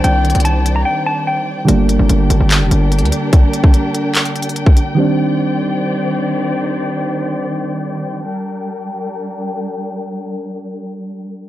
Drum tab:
HH |x-----------x--x--x--x--x-----------x-----------------------------------------------------------|x-----------x-----------x-----------x-----------x-----------x-----------x---x---x---x-----------|x-----------x-----------x-----------x-----------x-----x-----x---x---x---x-----------x-----------|------------------------------------------------------------------------------------------------|
CP |------------------------------------------------------------------------------------------------|------------------------------------------------x-----------------------------------------------|------------------------------------------------x-----------------------------------------------|------------------------------------------------------------------------------------------------|
BD |------------------------------------------------------------------------------------------------|------------------------------------------------------------------------------------------------|o-----------------o-----------------------------------------------------------o-----------------|------------------------------------------------------------------------------------------------|

HH |------------------------------------------------------------------------------------------------|------------------------------------------------------------------------------------------------|------------------------------------------------------------------------------------------------|
CP |------------------------------------------------------------------------------------------------|------------------------------------------------------------------------------------------------|------------------------------------------------------------------------------------------------|
BD |------------------------------------------------------------------------------------------------|------------------------------------------------------------------------------------------------|------------------------------------------------------------------------------------------------|